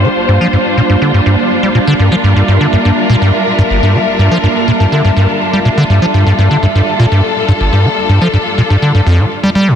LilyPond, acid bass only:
\new Staff \with { instrumentName = "Acid bass" } { \clef bass \time 4/4 \key g \dorian \tempo 4 = 123 g16 r16 g,16 f16 g,16 r16 bes,16 g,16 d16 g,16 g,16 r8 g16 bes,16 d16 | g,16 f16 g,16 g,16 g,16 d16 g,16 g,16 r16 bes,16 g,16 r8 g,16 g,,16 g,16 | g16 r16 g,16 f16 g,16 r16 bes,16 g,16 d16 g,16 g,16 r8 g16 bes,16 d16 | g,16 f16 g,16 g,16 g,16 d16 g,16 g,16 r16 bes,16 g,16 r8 g,16 g,,16 g,16 |
g16 r16 g,16 f16 g,16 r16 bes,16 g,16 d16 g,16 f,16 bes,16 r16 g16 g16 g,16 | }